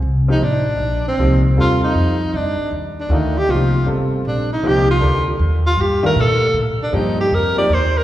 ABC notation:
X:1
M:3/4
L:1/8
Q:"Swing" 1/4=156
K:Cdor
V:1 name="Tenor saxophone"
z E D3 C- | C z F E3 | D2 z D E G | F2 z2 D E |
G F2 z2 F | G B A2 z D | E G B d c B |]
V:2 name="Grand piano"
z [F,B,EG] z4 | [F,B,EG] z [G,CFA]3 z | z4 [E,A,DF] z | [F,B,EG] z [G,CFA]3 z |
[F,B,EG] z [DGAB]3 z | z [E,A,DF] z4 | [F,B,EG] z2 [F,B,EG] z2 |]
V:3 name="Upright bass" clef=bass
C,,2 A,,,2 B,,,2 | C,,2 E,,2 F,,2 | G,, z E,,2 D,,2 | C,,2 G,,,2 B,,,2 |
C,,2 D,,2 E,,2 | G,,2 B,,2 A,, z | G,,2 F,,2 E,,2 |]